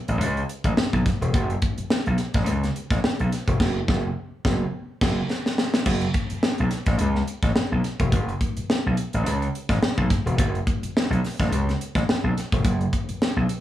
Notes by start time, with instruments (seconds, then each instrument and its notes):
0.08 slap bass A1, closed hi-hat
0.21 slap bass C#2, closed hi-hat
0.37 closed hi-hat
0.49 closed hi-hat
0.64 slap bass A1, kick, closed hi-hat
0.77 muted slap bass stroke, snare
0.93 slap bass B1, kick, closed hi-hat
1.06 kick, snare, closed hi-hat
1.21 slap bass E1, closed hi-hat
1.34 slap bass F#1, kick, closed hi-hat
1.50 closed hi-hat
1.62 kick, closed hi-hat
1.78 muted slap bass stroke, closed hi-hat
1.90 snare
2.06 slap bass B1, closed hi-hat
2.18 snare, closed hi-hat
2.34 slap bass A1, kick, snare, closed hi-hat
2.46 slap bass C#2, closed hi-hat
2.63 snare, closed hi-hat
2.76 closed hi-hat
2.90 slap bass A1, kick, snare, closed hi-hat
3.04 muted slap bass stroke, snare
3.19 slap bass B1, closed hi-hat
3.32 snare, closed hi-hat
3.48 slap bass E1, kick, closed hi-hat
3.60 slap bass F#1, kick, snare, crash
3.88 slap bass F#1, kick, snare
4.45 slap bass F#1, kick, snare
5.01 slap bass F#1, kick, snare, crash
5.30 snare
5.46 snare
5.58 snare
5.74 snare
5.86 slap bass F#1, kick, crash
6.01 closed hi-hat
6.14 kick, closed hi-hat
6.30 muted slap bass stroke, closed hi-hat
6.43 snare
6.58 slap bass B1, closed hi-hat
6.71 snare, closed hi-hat
6.86 slap bass A1, kick, snare, closed hi-hat
6.99 slap bass C#2, closed hi-hat
7.15 snare
7.28 closed hi-hat
7.43 slap bass A1, kick, snare, closed hi-hat
7.56 snare
7.72 slap bass B1
7.84 snare, closed hi-hat
8.00 slap bass E1, kick, closed hi-hat
8.12 slap bass F#1, kick, closed hi-hat
8.29 closed hi-hat
8.41 kick, closed hi-hat
8.57 muted slap bass stroke, closed hi-hat
8.70 snare
8.86 slap bass B1
8.97 closed hi-hat
9.13 slap bass A1, closed hi-hat
9.26 slap bass C#2, closed hi-hat
9.42 closed hi-hat
9.55 closed hi-hat
9.69 slap bass A1, kick, snare, closed hi-hat
9.83 muted slap bass stroke, snare
9.98 slap bass B1, kick
10.10 kick, snare, closed hi-hat
10.26 slap bass E1, closed hi-hat
10.38 slap bass F#1, kick, closed hi-hat
10.55 closed hi-hat
10.67 kick, closed hi-hat
10.83 muted slap bass stroke, closed hi-hat
10.97 snare
11.10 slap bass B1, closed hi-hat
11.24 snare, open hi-hat
11.40 slap bass A1, kick, snare, closed hi-hat
11.51 slap bass C#2, closed hi-hat
11.69 snare, closed hi-hat
11.81 closed hi-hat
11.95 slap bass A1, kick, snare, closed hi-hat
12.08 muted slap bass stroke, snare
12.24 slap bass B1
12.38 snare, closed hi-hat
12.52 slap bass E1, kick, closed hi-hat
12.64 slap bass F#1, kick, closed hi-hat
12.81 closed hi-hat
12.93 kick, closed hi-hat
13.09 muted slap bass stroke, closed hi-hat
13.22 snare
13.36 slap bass B1
13.49 closed hi-hat